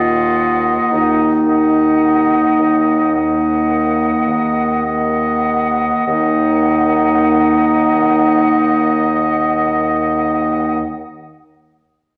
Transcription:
0.00 0.73 D#2 soft
0.00 1.43 A#3 soft
0.00 0.93 F4 medium
0.00 1.31 D#5 soft
0.00 1.18 F#5 soft
0.91 2.39 D#2 soft
0.91 4.26 D#4 soft
1.47 2.97 A#3 soft
1.47 3.11 D#5 soft
1.47 3.10 F#5 soft
2.59 4.07 D#2 soft
3.14 4.82 A#3 soft
3.14 4.82 D#5 soft
3.14 4.82 F#5 soft
4.27 5.87 D#2 soft
4.85 6.05 A#3 soft
4.85 6.05 D#5 soft
4.85 6.05 F#5 soft
6.07 10.79 D#2 soft
6.07 10.80 A#3 soft
6.07 10.79 D#4 soft
6.07 10.79 D#5 soft
6.07 10.80 F#5 soft

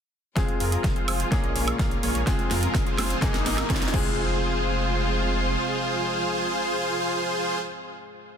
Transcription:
0.35 0.45 F1 loud
0.35 1.31 C3 medium
0.35 1.31 F3 medium
0.35 1.26 G#3 medium
0.35 1.31 G#3 medium
0.35 1.27 C4 medium
0.35 0.56 F4 medium
0.35 2.25 F4 medium
0.35 1.27 F4 medium
0.35 0.56 G#4 medium
0.35 1.28 G#4 medium
0.35 0.56 C5 medium
0.35 kick loud
0.35 snare soft
0.35 closed hi-hat medium
0.35 riser medium
0.48 closed hi-hat soft
0.60 0.77 F2 medium
0.60 0.93 F4 medium
0.60 0.93 G#4 medium
0.60 0.93 A#4 medium
0.60 open hi-hat medium
0.72 closed hi-hat medium
0.84 0.92 F1 medium
0.84 kick loud
0.84 snare soft
0.84 closed hi-hat medium
0.96 1.06 F4 medium
0.96 1.06 G#4 medium
0.96 1.06 C5 medium
0.96 closed hi-hat soft
1.08 1.24 F1 medium
1.08 1.29 F4 medium
1.08 1.29 G#4 medium
1.08 1.29 C5 medium
1.08 open hi-hat medium
1.08 high woodblock medium
1.20 closed hi-hat medium
1.31 1.40 A#1 medium
1.31 2.22 A#2 medium
1.31 2.26 C#3 medium
1.31 3.91 G#3 medium
1.31 2.22 A#3 medium
1.31 1.51 A#3 medium
1.31 2.26 A#3 medium
1.31 1.51 C#4 medium
1.31 2.22 C#4 medium
1.31 1.51 F4 medium
1.31 2.23 F4 medium
1.31 1.51 G#4 medium
1.31 2.23 G#4 medium
1.31 1.51 D#5 loud
1.31 kick loud
1.31 snare medium
1.31 closed hi-hat soft
1.44 1.52 A#1 loud
1.44 closed hi-hat soft
1.56 1.72 A#1 medium
1.56 1.77 A#3 medium
1.56 1.77 C#4 medium
1.56 1.77 F4 medium
1.56 1.77 G#4 medium
1.56 1.77 C#5 medium
1.56 open hi-hat loud
1.68 closed hi-hat medium
1.68 high woodblock medium
1.79 1.96 A#1 medium
1.79 1.98 A#3 medium
1.79 1.98 C#4 medium
1.79 1.98 F4 medium
1.79 1.98 G#4 medium
1.79 1.98 F5 medium
1.79 kick loud
1.79 snare medium
1.79 closed hi-hat medium
1.91 closed hi-hat soft
2.03 2.11 A#1 loud
2.03 2.22 A#3 medium
2.03 2.22 C#4 medium
2.03 2.22 F4 medium
2.03 2.22 G#4 medium
2.03 2.22 C#5 loud
2.03 open hi-hat medium
2.15 2.23 A#1 medium
2.15 closed hi-hat medium
2.26 2.35 F1 loud
2.26 3.21 C3 medium
2.26 3.21 F3 medium
2.26 3.17 G#3 medium
2.26 3.17 C4 medium
2.26 3.21 F4 medium
2.26 3.18 F4 medium
2.26 3.18 G#4 medium
2.26 kick loud
2.26 snare medium
2.26 closed hi-hat medium
2.39 closed hi-hat soft
2.51 2.67 F2 medium
2.51 2.84 F4 medium
2.51 2.84 G#4 medium
2.51 2.84 A#4 medium
2.51 snare medium
2.51 open hi-hat loud
2.63 closed hi-hat medium
2.75 2.83 F1 medium
2.75 kick loud
2.75 snare medium
2.75 closed hi-hat medium
2.87 2.97 F4 medium
2.87 2.97 G#4 medium
2.87 2.97 C5 medium
2.87 closed hi-hat soft
2.98 3.15 F1 medium
2.98 3.19 F4 medium
2.98 3.19 G#4 medium
2.98 3.19 C5 loud
2.98 snare medium
2.98 open hi-hat medium
2.98 high woodblock medium
3.10 closed hi-hat medium
3.21 3.30 G#1 medium
3.21 3.93 G#2 medium
3.21 3.93 A#2 medium
3.21 3.93 D#3 medium
3.21 3.90 G#3 medium
3.21 3.94 A#3 medium
3.21 3.93 D#4 medium
3.21 3.94 D#4 medium
3.21 3.94 G#4 medium
3.21 3.41 C5 loud
3.21 kick loud
3.21 snare medium
3.21 closed hi-hat soft
3.34 3.42 G#1 loud
3.34 snare medium
3.34 closed hi-hat soft
3.46 3.62 G#1 medium
3.46 3.67 D#4 medium
3.46 3.67 G#4 medium
3.46 3.67 A#4 medium
3.46 snare loud
3.46 open hi-hat loud
3.58 snare medium
3.58 closed hi-hat medium
3.58 high woodblock medium
3.70 3.86 G#1 medium
3.70 3.89 D#4 medium
3.70 3.89 G#4 medium
3.70 3.89 C#5 medium
3.70 kick loud
3.70 snare loud
3.70 closed hi-hat medium
3.76 snare medium
3.82 snare medium
3.82 closed hi-hat soft
3.88 snare medium
3.92 5.56 F1 loud
3.92 7.59 C3 medium
3.92 7.59 F3 medium
3.92 7.57 G#3 medium
3.92 7.59 G#3 medium
3.92 7.59 C4 medium
3.92 7.59 F4 medium
3.92 7.60 F4 medium
3.92 7.59 G#4 medium
3.92 7.61 G#4 medium
3.92 7.59 C5 loud
3.92 kick loud
3.92 crash medium
3.92 impact medium

